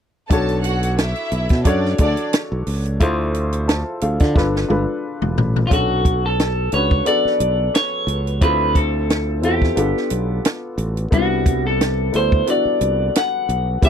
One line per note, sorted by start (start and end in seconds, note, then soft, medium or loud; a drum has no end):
0.30 1.12 B1 medium
0.30 1.35 D4 medium
0.30 1.36 F#4 medium
0.30 0.57 A4 medium
0.30 1.36 A4 medium
0.30 1.37 C#5 medium
0.30 0.57 A5 medium
0.30 kick medium
0.30 closed hi-hat medium
0.49 closed hi-hat soft
0.64 0.91 F#4 medium
0.64 0.91 F#5 medium
0.64 closed hi-hat medium
0.83 closed hi-hat soft
0.98 1.62 E4 medium
0.98 1.62 E5 medium
0.98 snare medium
0.98 closed hi-hat medium
1.16 closed hi-hat soft
1.31 1.47 B1 medium
1.31 closed hi-hat medium
1.49 1.63 B2 medium
1.49 kick medium
1.49 snare soft
1.49 closed hi-hat soft
1.64 1.93 F#2 medium
1.64 1.92 D4 medium
1.64 1.93 D4 medium
1.64 1.92 F#4 medium
1.64 1.93 A4 medium
1.64 1.93 C#5 medium
1.64 1.93 D5 medium
1.64 kick medium
1.64 closed hi-hat medium
1.85 snare soft
1.98 2.14 D2 medium
1.98 2.78 D4 medium
1.98 2.27 D4 medium
1.98 2.79 F#4 medium
1.98 2.79 A4 medium
1.98 2.27 D5 medium
1.98 2.80 D5 medium
1.98 kick medium
1.98 closed hi-hat medium
2.17 closed hi-hat soft
2.33 snare loud
2.33 closed hi-hat medium
2.52 2.64 B1 medium
2.67 3.01 C#2 medium
2.67 open hi-hat medium
2.85 closed hi-hat soft
3.00 3.83 D2 medium
3.00 3.68 E4 medium
3.00 3.68 F4 medium
3.00 3.69 A4 medium
3.00 3.67 C5 medium
3.00 kick medium
3.00 closed hi-hat medium
3.34 closed hi-hat medium
3.52 closed hi-hat soft
3.68 4.00 C5 soft
3.68 4.00 A5 medium
3.68 snare loud
3.68 closed hi-hat medium
4.01 4.17 D2 medium
4.01 4.20 A4 medium
4.01 4.19 F5 medium
4.01 closed hi-hat medium
4.20 4.33 D3 medium
4.20 4.34 F4 soft
4.20 4.52 D5 medium
4.20 kick medium
4.20 snare soft
4.20 closed hi-hat soft
4.34 4.64 G1 medium
4.34 4.62 D4 medium
4.34 4.62 F4 medium
4.34 4.63 A4 medium
4.34 4.63 B4 medium
4.34 kick medium
4.34 snare soft
4.56 snare soft
4.68 4.85 G1 medium
4.68 5.49 D4 medium
4.68 5.49 F4 medium
4.68 5.49 A4 medium
4.68 5.50 B4 medium
4.68 high tom medium
5.22 5.34 E1 medium
5.22 mid tom medium
5.38 5.65 A1 medium
5.38 floor tom medium
5.56 floor tom medium
5.67 6.50 C#4 medium
5.67 6.50 D4 medium
5.67 5.72 F4 medium
5.71 6.68 B1 medium
5.71 6.51 F#4 medium
5.71 6.25 F#4 medium
5.71 6.51 A4 medium
5.71 kick medium
5.71 closed hi-hat medium
6.05 kick medium
6.05 closed hi-hat soft
6.26 6.70 A4 medium
6.40 snare medium
6.40 closed hi-hat medium
6.72 7.00 C#2 medium
6.72 6.99 C#4 medium
6.72 7.00 D4 medium
6.72 7.00 F#4 medium
6.72 7.01 B4 medium
6.72 7.07 C#5 medium
6.72 closed hi-hat medium
6.91 kick medium
7.05 8.11 B3 medium
7.05 8.11 D4 medium
7.05 8.12 F#4 medium
7.05 8.12 A4 medium
7.05 7.75 D5 medium
7.05 closed hi-hat medium
7.25 muted fingered electric bass stroke soft
7.25 snare soft
7.40 7.68 B1 medium
7.40 closed hi-hat medium
7.75 8.42 C#5 medium
7.75 snare loud
7.75 closed hi-hat medium
8.07 8.42 C#2 medium
8.07 closed hi-hat medium
8.27 closed hi-hat soft
8.41 9.43 D2 medium
8.41 9.21 C4 medium
8.41 9.21 E4 medium
8.41 9.22 F4 medium
8.41 9.22 A4 medium
8.41 8.77 B4 medium
8.41 kick medium
8.41 closed hi-hat medium
8.75 9.39 A4 medium
8.75 kick medium
8.75 closed hi-hat medium
9.10 snare loud
9.10 closed hi-hat medium
9.42 9.71 E2 medium
9.42 9.69 C4 medium
9.42 9.70 E4 medium
9.42 9.70 F4 medium
9.42 10.41 G4 medium
9.42 9.71 A4 medium
9.42 closed hi-hat medium
9.62 kick medium
9.62 snare soft
9.76 9.92 G1 medium
9.76 10.81 B3 medium
9.76 10.82 D4 medium
9.76 10.82 F4 medium
9.76 10.83 A4 medium
9.76 closed hi-hat medium
9.95 muted fingered electric bass stroke soft
9.95 snare soft
10.10 10.39 B1 medium
10.10 closed hi-hat medium
10.45 snare loud
10.45 closed hi-hat medium
10.78 11.06 A1 medium
10.78 closed hi-hat medium
10.97 closed hi-hat soft
11.11 12.10 C2 medium
11.11 11.92 G3 medium
11.11 11.91 B3 medium
11.11 11.92 D4 medium
11.11 11.92 E4 medium
11.11 11.66 F#4 medium
11.11 kick medium
11.11 closed hi-hat medium
11.46 kick medium
11.46 closed hi-hat medium
11.67 12.16 A4 medium
11.81 snare medium
11.81 closed hi-hat medium
12.12 12.41 D2 medium
12.12 12.40 B3 medium
12.12 12.40 D4 medium
12.12 12.41 E4 medium
12.12 12.41 A4 medium
12.12 12.49 C5 medium
12.12 closed hi-hat medium
12.32 kick medium
12.47 13.52 B3 medium
12.47 13.53 D4 medium
12.47 13.53 E4 medium
12.47 13.53 F#4 medium
12.47 13.17 D5 medium
12.47 closed hi-hat medium
12.65 muted fingered electric bass stroke soft
12.81 13.09 C2 medium
12.81 closed hi-hat medium
13.15 13.84 F#5 medium
13.15 snare loud
13.15 closed hi-hat loud
13.49 13.76 B1 medium
13.49 closed hi-hat medium
13.82 13.89 C#2 loud
13.82 13.89 B3 medium
13.82 13.89 C#4 medium
13.82 13.89 E4 medium
13.82 13.89 G4 medium
13.82 13.89 E5 medium
13.82 kick medium
13.82 closed hi-hat medium